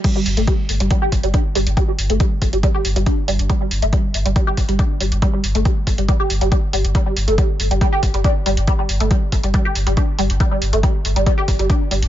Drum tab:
CC |x---------------|----------------|----------------|----------------|
HH |x-oxx-oxx-oxx-ox|x-oxx-oxx-oxx-ox|x-oxx-oxx-oxx-ox|x-oxx-oxx-oxx-ox|
BD |o---o---o-o-o---|o---o-o-o---o---|o---o---o-o-o---|o---o-o-o---o---|

CC |----------------|----------------|----------------|
HH |x-oxx-oxx-oxx-ox|x-oxx-oxx-oxx-ox|x-oxx-oxx-oxx-ox|
BD |o---o---o-o-o---|o---o-o-o---o---|o---o---o-o-o---|